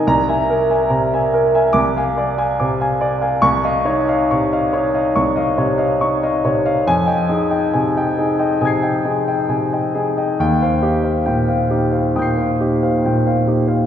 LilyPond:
<<
  \new Staff \with { instrumentName = "Grand piano" } { \time 4/4 \key f \minor \tempo 4 = 69 << { bes''8 r4. d'''8 r4. | des'''8 r2. r8 | aes''8 r4. <ees''' aes''' c''''>2 | g''8 r4. <ees''' g''' c''''>2 | } \\ { r16 <e'' gis''>16 bes'16 <e'' gis''>16 bes''16 <e'' gis''>16 bes'16 <e'' gis''>16 r16 <f'' aes''>16 d''16 <f'' aes''>16 d'''16 <f'' aes''>16 d''16 <f'' aes''>16 | r16 <ees'' f''>16 des''16 <ees'' f''>16 des'''16 <ees'' f''>16 des''16 <ees'' f''>16 des'''16 <ees'' f''>16 des''16 <ees'' f''>16 des'''16 <ees'' f''>16 des''16 <ees'' f''>16 | r16 <ees'' g''>16 aes'16 <ees'' g''>16 aes''16 <ees'' g''>16 aes'16 <ees'' g''>16 aes''16 <ees'' g''>16 aes'16 <ees'' g''>16 aes''16 <ees'' g''>16 aes'16 <ees'' g''>16 | r16 <c'' f''>16 g'16 <c'' f''>16 g''16 <c'' f''>16 g'16 <c'' f''>16 g''16 <c'' f''>16 g'16 <c'' f''>16 g''16 <c'' f''>16 g'16 <c'' f''>16 | } >> }
  \new Staff \with { instrumentName = "Grand piano" } { \clef bass \time 4/4 \key f \minor c,4 c4 c,4 c4 | c,8 ees'8 c8 ees'8 c,8 c8 ees'8 c8 | f,8 ees'8 c8 ees'8 c8 ees'8 c8 ees'8 | ees,8 ees'8 bes,8 ees'8 bes,8 ees'8 bes,8 ees'8 | }
>>